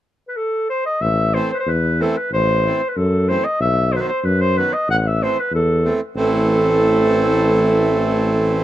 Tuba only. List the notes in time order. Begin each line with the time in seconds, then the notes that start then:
1.01 A1
1.66 E2
2.32 A1
2.96 F#2
3.60 B1
4.24 F#2
4.88 A1
5.52 E2
6.16 A1